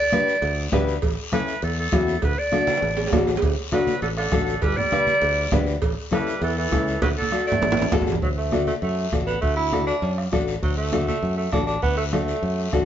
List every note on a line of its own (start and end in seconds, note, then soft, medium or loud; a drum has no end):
0.00 0.83 D5 loud
0.12 0.33 D4 medium
0.12 0.34 G4 medium
0.12 0.34 B4 medium
0.12 bombo rim medium
0.12 high conga medium
0.12 short guiro medium
0.27 short guiro medium
0.42 0.66 D2 loud
0.42 cowbell medium
0.42 long guiro medium
0.72 0.97 D2 loud
0.72 0.93 D4 loud
0.72 0.93 G4 medium
0.72 0.94 B4 loud
0.72 bombo low medium
0.72 bombo rim medium
0.72 high conga medium
0.72 low conga medium
0.72 low timbale medium
0.72 short guiro medium
0.87 short guiro medium
1.02 1.15 A1 loud
1.02 bombo low medium
1.02 cowbell loud
1.02 long guiro medium
1.32 1.53 C#4 medium
1.32 1.53 E4 medium
1.32 1.54 A4 medium
1.32 1.60 B4 medium
1.32 bombo rim medium
1.32 high conga medium
1.32 short guiro medium
1.47 short guiro medium
1.62 1.87 E2 loud
1.62 1.77 A4 medium
1.62 cowbell medium
1.62 long guiro medium
1.79 2.20 A4 medium
1.92 2.16 E2 loud
1.92 2.13 C#4 medium
1.92 2.13 E4 medium
1.92 2.14 F#4 medium
1.92 bombo low medium
1.92 bombo rim medium
1.92 high conga medium
1.92 low timbale medium
1.92 short guiro medium
2.07 short guiro medium
2.22 2.35 D2 medium
2.22 2.40 B4 medium
2.22 bombo low medium
2.22 cowbell loud
2.22 long guiro medium
2.38 3.28 D5 loud
2.52 2.73 D4 medium
2.52 2.73 F#4 medium
2.52 2.73 A4 medium
2.52 bombo rim medium
2.52 high conga medium
2.52 short guiro medium
2.67 high conga medium
2.67 high timbale medium
2.67 short guiro medium
2.77 high timbale medium
2.82 3.06 A1 medium
2.82 cowbell medium
2.82 long guiro medium
2.97 low timbale medium
3.07 low timbale medium
3.12 3.36 A1 medium
3.12 3.33 D4 medium
3.12 3.33 F#4 medium
3.12 3.33 A4 medium
3.12 bombo low medium
3.12 bombo rim medium
3.12 high conga medium
3.12 low conga medium
3.12 short guiro medium
3.17 low timbale medium
3.27 low timbale medium
3.27 short guiro medium
3.37 low timbale medium
3.42 3.54 D2 loud
3.42 bombo low medium
3.42 cowbell loud
3.42 long guiro medium
3.72 4.01 F#3 medium
3.72 3.93 D4 medium
3.72 3.93 F#4 medium
3.72 3.93 A4 medium
3.72 4.00 B4 medium
3.72 bombo rim medium
3.72 high conga medium
3.72 short guiro medium
3.87 high conga medium
3.87 short guiro medium
4.02 4.26 A1 medium
4.02 4.09 D3 medium
4.02 4.09 A4 medium
4.02 cowbell medium
4.02 long guiro medium
4.17 4.63 D3 medium
4.17 4.64 A4 medium
4.17 bombo rim medium
4.31 4.56 A1 medium
4.31 4.53 D4 medium
4.31 4.53 F#4 medium
4.31 4.53 A4 medium
4.31 bombo low medium
4.31 bombo rim medium
4.31 high conga medium
4.31 short guiro medium
4.47 short guiro medium
4.62 4.74 G1 loud
4.62 4.76 G3 medium
4.62 4.78 B4 medium
4.62 bombo low medium
4.62 cowbell loud
4.62 long guiro medium
4.76 5.67 G3 medium
4.76 5.67 D5 loud
4.76 low conga medium
4.92 5.13 D4 medium
4.92 5.13 G4 medium
4.92 5.13 B4 medium
4.92 bombo rim medium
4.92 high conga medium
4.92 short guiro medium
5.07 high conga medium
5.07 short guiro medium
5.22 5.46 D2 medium
5.22 cowbell medium
5.22 long guiro medium
5.52 5.76 D2 medium
5.52 5.73 D4 medium
5.52 5.73 G4 medium
5.52 5.73 B4 loud
5.52 bombo low medium
5.52 bombo rim medium
5.52 high conga medium
5.52 low conga medium
5.52 low timbale medium
5.52 short guiro medium
5.67 short guiro medium
5.82 5.94 A1 loud
5.82 bombo low medium
5.82 cowbell loud
5.82 long guiro medium
6.11 6.40 G3 medium
6.11 6.33 C#4 medium
6.11 6.33 E4 medium
6.11 6.33 A4 medium
6.11 6.40 B4 medium
6.11 bombo rim medium
6.11 high conga medium
6.11 short guiro medium
6.27 short guiro medium
6.42 6.66 E2 loud
6.42 6.56 E3 medium
6.42 6.57 A4 medium
6.42 cowbell medium
6.42 long guiro medium
6.57 6.99 E3 medium
6.57 6.99 A4 medium
6.71 6.96 C#2 loud
6.71 6.93 C#4 medium
6.71 6.93 E4 medium
6.71 6.93 A4 medium
6.71 bombo low medium
6.71 bombo rim medium
6.71 high conga medium
6.71 short guiro medium
6.87 short guiro medium
7.02 7.14 D2 loud
7.02 7.09 F#3 medium
7.02 7.09 B4 medium
7.02 bombo low medium
7.02 cowbell loud
7.02 high conga medium
7.02 long guiro medium
7.17 7.45 D3 medium
7.17 7.45 A4 loud
7.22 high conga medium
7.32 7.53 D4 medium
7.32 7.53 F#4 medium
7.32 7.53 A4 medium
7.32 bombo rim medium
7.32 short guiro medium
7.47 8.03 A3 medium
7.47 8.03 D5 loud
7.47 short guiro medium
7.52 low conga medium
7.62 7.86 A1 medium
7.62 cowbell medium
7.62 low conga medium
7.62 long guiro medium
7.72 low conga medium
7.77 high timbale loud
7.82 low conga medium
7.92 8.16 A1 loud
7.92 8.13 D4 loud
7.92 8.13 F#4 medium
7.92 8.13 A4 loud
7.92 bombo low medium
7.92 bombo rim medium
7.92 low conga medium
7.92 low timbale medium
7.92 short guiro medium
8.02 low conga medium
8.07 low timbale medium
8.07 short guiro medium
8.12 low conga medium
8.22 8.70 D2 medium
8.22 8.29 F#3 medium
8.22 bombo low medium
8.22 long guiro medium
8.37 8.65 A3 medium
8.52 8.73 D4 medium
8.52 8.73 F#4 medium
8.52 8.73 A4 medium
8.52 bombo rim medium
8.52 high conga medium
8.52 short guiro medium
8.67 8.74 A3 medium
8.67 high conga medium
8.67 short guiro medium
8.82 9.06 F#2 medium
8.82 9.10 A3 medium
8.82 long guiro medium
9.12 9.36 A1 medium
9.12 9.33 D4 medium
9.12 9.33 F#4 medium
9.12 9.34 A4 medium
9.12 bombo low medium
9.12 bombo rim medium
9.12 high conga medium
9.12 short guiro medium
9.27 9.40 B3 medium
9.27 short guiro medium
9.41 9.91 D2 medium
9.41 9.56 A3 medium
9.41 bombo low medium
9.41 long guiro medium
9.56 9.85 E4 medium
9.72 9.93 D4 medium
9.72 9.94 F#4 medium
9.72 9.94 A4 medium
9.72 bombo rim medium
9.72 high conga medium
9.72 short guiro medium
9.87 10.15 D4 medium
9.87 short guiro medium
10.02 10.26 F#2 medium
10.02 long guiro medium
10.18 bombo rim medium
10.32 10.57 A1 medium
10.32 10.53 D4 medium
10.32 10.53 F#4 medium
10.32 10.54 A4 medium
10.32 bombo low medium
10.32 bombo rim medium
10.32 high conga medium
10.32 short guiro medium
10.48 short guiro medium
10.63 11.11 D2 medium
10.63 10.76 F#3 medium
10.63 bombo low medium
10.63 long guiro medium
10.77 11.05 A3 medium
10.92 11.14 D4 medium
10.92 11.14 F#4 medium
10.92 11.14 A4 medium
10.92 bombo rim medium
10.92 high conga medium
10.92 short guiro medium
11.07 11.36 A3 medium
11.07 high conga medium
11.07 short guiro medium
11.23 11.47 F#2 medium
11.23 long guiro medium
11.37 11.51 A3 medium
11.52 11.77 A1 medium
11.52 11.66 D4 medium
11.52 11.74 D4 medium
11.52 11.74 F#4 medium
11.52 11.74 A4 medium
11.52 bombo low medium
11.52 bombo rim medium
11.52 high conga medium
11.52 short guiro medium
11.67 11.81 D4 medium
11.67 short guiro medium
11.82 12.31 D2 medium
11.82 11.96 B3 medium
11.82 bombo low medium
11.82 long guiro medium
11.97 12.04 A3 medium
12.12 12.84 A3 medium
12.12 12.34 D4 medium
12.12 12.34 F#4 medium
12.12 12.34 A4 medium
12.12 bombo rim medium
12.12 high conga medium
12.12 short guiro medium
12.28 short guiro medium
12.42 12.67 F#2 medium
12.42 long guiro medium
12.72 12.85 A1 medium
12.72 12.85 D4 medium
12.72 12.85 F#4 medium
12.72 12.85 A4 medium
12.72 bombo low medium
12.72 bombo rim medium
12.72 high conga medium
12.72 short guiro medium